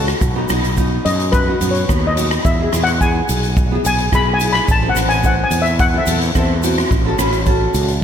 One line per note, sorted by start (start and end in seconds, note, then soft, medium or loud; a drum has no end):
0.00 0.13 C#2 medium
0.00 0.19 C#4 medium
0.00 0.11 F#4 medium
0.00 0.19 F#4 medium
0.00 0.19 A4 medium
0.08 cross-stick medium
0.08 closed hi-hat medium
0.08 shaker soft
0.21 0.45 B1 medium
0.21 kick loud
0.21 closed hi-hat medium
0.21 shaker medium
0.35 0.44 B3 medium
0.35 0.44 D#4 medium
0.35 0.44 F#4 medium
0.49 0.97 B1 medium
0.49 0.67 B3 medium
0.49 0.67 D#4 medium
0.49 0.67 F#4 medium
0.49 cross-stick medium
0.49 closed hi-hat medium
0.49 shaker medium
0.64 closed hi-hat medium
0.64 shaker soft
0.77 1.20 B3 medium
0.77 1.20 D#4 medium
0.77 1.20 F#4 loud
0.77 kick medium
0.77 closed hi-hat medium
0.77 shaker medium
1.05 1.53 F#2 loud
1.05 1.34 D#5 medium
1.05 closed hi-hat loud
1.20 closed hi-hat medium
1.20 shaker soft
1.32 1.71 B4 medium
1.32 kick loud
1.32 cross-stick medium
1.32 closed hi-hat medium
1.32 shaker medium
1.47 1.56 B3 medium
1.47 1.56 D#4 medium
1.47 1.56 F#4 medium
1.61 1.85 F#2 medium
1.61 1.78 B3 medium
1.61 1.78 D#4 medium
1.61 1.78 F#4 medium
1.61 closed hi-hat medium
1.61 shaker medium
1.71 2.05 C#5 medium
1.71 closed hi-hat medium
1.77 shaker soft
1.88 2.36 D#2 medium
1.88 2.06 B3 medium
1.88 2.06 D#4 medium
1.88 2.06 F#4 medium
1.88 kick medium
1.88 cross-stick medium
1.88 closed hi-hat medium
1.88 shaker medium
2.07 2.42 D#5 medium
2.17 2.42 B3 medium
2.17 2.42 D#4 medium
2.17 2.43 F#4 medium
2.17 closed hi-hat medium
2.17 shaker medium
2.31 cross-stick medium
2.31 closed hi-hat medium
2.31 shaker soft
2.44 2.69 E2 medium
2.44 2.84 E5 medium
2.44 kick loud
2.44 closed hi-hat medium
2.44 shaker medium
2.59 2.68 B3 medium
2.59 2.68 E4 medium
2.59 2.68 G#4 medium
2.72 3.20 E2 medium
2.72 2.90 B3 medium
2.72 2.90 E4 medium
2.72 2.90 G#4 medium
2.72 cross-stick medium
2.72 closed hi-hat medium
2.72 shaker loud
2.84 3.02 F#5 medium
2.84 closed hi-hat medium
2.88 shaker soft
3.01 3.43 B3 medium
3.01 3.43 E4 medium
3.01 3.44 G#4 medium
3.01 3.27 G#5 medium
3.01 kick medium
3.01 closed hi-hat medium
3.01 shaker medium
3.29 3.76 B1 loud
3.29 closed hi-hat medium
3.29 shaker loud
3.43 closed hi-hat medium
3.43 shaker soft
3.57 kick loud
3.57 closed hi-hat medium
3.57 shaker medium
3.71 3.79 B3 medium
3.71 3.80 E4 medium
3.71 3.80 G#4 medium
3.84 4.08 B1 medium
3.84 4.01 B3 medium
3.84 4.02 E4 medium
3.84 4.02 G#4 medium
3.84 4.12 G#5 medium
3.84 closed hi-hat medium
3.84 shaker loud
3.98 closed hi-hat medium
4.12 4.60 B1 loud
4.12 4.29 B3 medium
4.12 4.29 E4 medium
4.12 4.30 G#4 medium
4.12 4.33 B5 medium
4.12 kick medium
4.12 cross-stick medium
4.12 closed hi-hat medium
4.12 shaker medium
4.34 4.50 G#5 medium
4.40 4.66 B3 medium
4.40 4.66 E4 medium
4.40 4.66 G#4 medium
4.40 closed hi-hat medium
4.40 shaker loud
4.52 4.70 B5 medium
4.52 cross-stick medium
4.52 closed hi-hat medium
4.52 shaker soft
4.68 4.92 A1 loud
4.68 4.89 A5 medium
4.68 kick loud
4.68 closed hi-hat medium
4.68 shaker medium
4.83 4.91 C4 medium
4.83 4.91 E4 medium
4.83 4.91 A4 medium
4.89 5.07 F#5 medium
4.95 5.43 A1 medium
4.95 5.13 C4 medium
4.95 5.13 E4 medium
4.95 5.13 B4 medium
4.95 cross-stick medium
4.95 closed hi-hat medium
4.95 shaker loud
5.09 5.26 G#5 medium
5.09 closed hi-hat medium
5.09 shaker soft
5.22 5.65 C4 medium
5.22 5.66 E4 medium
5.22 5.66 A4 medium
5.22 5.44 F#5 medium
5.22 kick medium
5.22 closed hi-hat medium
5.22 shaker medium
5.44 5.62 G#5 medium
5.51 5.98 E2 loud
5.51 closed hi-hat medium
5.51 shaker loud
5.62 5.79 E5 medium
5.62 closed hi-hat medium
5.62 shaker soft
5.79 5.88 F#5 loud
5.79 kick loud
5.79 closed hi-hat medium
5.79 shaker medium
5.93 6.02 C4 medium
5.93 6.02 E4 medium
5.93 6.02 A4 medium
5.98 6.50 E5 medium
6.06 6.31 E2 medium
6.06 6.24 C4 medium
6.06 6.25 E4 medium
6.06 6.25 A4 medium
6.06 closed hi-hat loud
6.06 shaker loud
6.21 closed hi-hat medium
6.35 6.83 E2 medium
6.35 6.52 C4 medium
6.35 6.52 E4 medium
6.35 6.53 A4 medium
6.35 kick medium
6.35 cross-stick medium
6.35 closed hi-hat medium
6.35 shaker medium
6.63 6.88 C4 medium
6.63 6.89 E4 medium
6.63 6.89 F#4 medium
6.63 closed hi-hat medium
6.63 shaker medium
6.77 cross-stick medium
6.77 closed hi-hat medium
6.77 shaker soft
6.91 7.15 A1 medium
6.91 kick loud
6.91 closed hi-hat medium
6.91 shaker medium
7.05 7.14 C#4 medium
7.05 7.14 F#4 medium
7.05 7.14 A4 medium
7.18 7.66 A1 medium
7.18 7.36 C#4 medium
7.18 7.36 F#4 medium
7.18 7.36 B4 medium
7.18 cross-stick medium
7.18 closed hi-hat medium
7.18 shaker loud
7.33 closed hi-hat medium
7.33 shaker soft
7.46 7.89 C#4 medium
7.46 7.89 F#4 medium
7.46 7.89 A4 medium
7.46 kick medium
7.46 closed hi-hat medium
7.46 shaker medium
7.74 8.04 C#2 loud
7.74 closed hi-hat medium
7.74 shaker medium
7.88 closed hi-hat medium